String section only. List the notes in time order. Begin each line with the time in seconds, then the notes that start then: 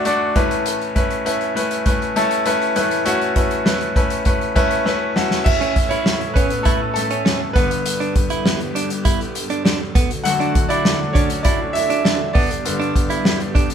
5.46 A2 E3 C#4 A4
7.55 G2 D3 B3 G4
9.95 D2 A3 F#4
12.35 G2 B3 G4